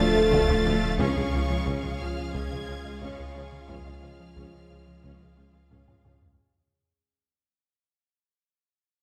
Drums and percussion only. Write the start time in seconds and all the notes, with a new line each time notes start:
0.32 taiko
0.83 taiko mid
0.99 taiko
1.67 taiko
2.34 taiko
3.02 taiko
3.52 taiko mid
3.69 taiko
4.36 taiko
5.04 taiko
5.71 taiko low-mid
5.88 taiko low-mid
6.05 taiko low-mid
6.22 taiko low